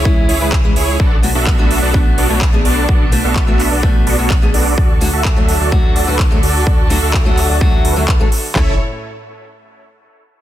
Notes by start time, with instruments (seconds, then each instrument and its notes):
Already playing: detuned saw bass C#2, string section C#3 C#4 E4 G#4
0.05 steel-string acoustic guitar E3 G#3 C#4 E4, kick
0.29 detuned saw bass C#2, supersaw synth E4 G#4 C#5, open hi-hat
0.40 detuned saw bass C#2, steel-string acoustic guitar E3 G#3 C#4 E4, supersaw synth E4 G#4 B4
0.53 kick, clap
0.64 steel-string acoustic guitar E3 G#3 C#4 E4
0.76 detuned saw bass C#2, supersaw synth E4 G#4 C#5, open hi-hat
1.00 detuned saw bass B1, string section A3 B3 D4, supersaw synth B3 D4 F#4 D5, kick
1.23 steel-string acoustic guitar A3 B3 D4 F#4, open hi-hat
1.35 detuned saw bass B1, supersaw synth B3 D4 F#4 A4 E5
1.47 kick, clap
1.58 steel-string acoustic guitar A3 B3 D4 F#4
1.71 open hi-hat
1.82 detuned saw bass B1, supersaw synth B3 D4 F#4 A4 D5
1.94 steel-string acoustic guitar A3 B3 D4 F#4, kick
2.18 detuned saw bass B1, supersaw synth B3 D4 F#4 A4 D5, open hi-hat
2.29 detuned saw bass B1, steel-string acoustic guitar A3 B3 D4 F#4, supersaw synth B3 D4 F#4 A4 C#5
2.41 kick, clap
2.53 steel-string acoustic guitar A3 B3 D4 G#4
2.65 detuned saw bass B1, supersaw synth B3 D4 F#4 A4 D5, open hi-hat
2.89 detuned saw bass B1, supersaw synth B3 D4 F#4 D5, kick
3.12 steel-string acoustic guitar A3 B3 D4 F#4, open hi-hat
3.24 detuned saw bass B1, supersaw synth B3 D4 F#4 A4 E5
3.36 kick, clap
3.47 steel-string acoustic guitar A3 B3 D4 F#4
3.60 clap, open hi-hat
3.71 detuned saw bass B1, supersaw synth B3 D4 F#4 A4 D5
3.83 steel-string acoustic guitar A3 B3 D4 F#4, kick
4.07 detuned saw bass B1, supersaw synth B3 D4 F#4 A4 D5, open hi-hat
4.18 detuned saw bass B1, steel-string acoustic guitar A3 B3 D4 F#4, supersaw synth B3 D4 F#4 A4 C#5
4.30 kick, clap
4.42 steel-string acoustic guitar A3 B3 D4 G#4
4.54 detuned saw bass B1, supersaw synth B3 D4 F#4 A4 D5, open hi-hat
4.78 detuned saw bass D2, string section D3 D4 F#4 A4, supersaw synth F#4 A4 D5, kick
5.01 steel-string acoustic guitar F#3 A3 D4 F#4, open hi-hat
5.13 detuned saw bass D2, supersaw synth F#4 A4 E5
5.25 kick, clap
5.36 steel-string acoustic guitar F#3 A3 D4 F#4
5.49 open hi-hat
5.60 detuned saw bass D2, supersaw synth F#4 A4 D5
5.71 steel-string acoustic guitar F#3 A3 D4 F#4, kick
5.96 detuned saw bass D2, supersaw synth F#4 A4 D5, open hi-hat
6.07 detuned saw bass D2, steel-string acoustic guitar F#3 A3 D4 F#4, supersaw synth F#4 A4 B4
6.19 kick, clap
6.31 steel-string acoustic guitar F#3 A3 D4 A4
6.43 detuned saw bass D2, supersaw synth F#4 A4 D5, open hi-hat
6.67 detuned saw bass D2, supersaw synth F#4 D5, kick
6.90 steel-string acoustic guitar F#3 A3 D4 F#4, open hi-hat
7.02 detuned saw bass D2, supersaw synth F#4 A4 E5
7.14 kick, clap
7.25 steel-string acoustic guitar F#3 A3 D4 F#4
7.38 clap, open hi-hat
7.49 detuned saw bass D2, supersaw synth F#4 A4 D5
7.61 steel-string acoustic guitar F#3 A3 D4 F#4, kick
7.85 detuned saw bass D2, supersaw synth F#4 A4 B4, open hi-hat
7.96 detuned saw bass D2, steel-string acoustic guitar F#3 A3 D4 F#4, supersaw synth F#4 A4 E5
8.08 detuned saw bass D2, supersaw synth B4, kick, clap
8.20 steel-string acoustic guitar F#3 A3 D4 A4
8.32 open hi-hat
8.54 detuned saw bass A1, string section A2 A3 E4 C#5, steel-string acoustic guitar A3 C#4 E4 A4, supersaw synth E4 A4 C#5, kick, clap, floor tom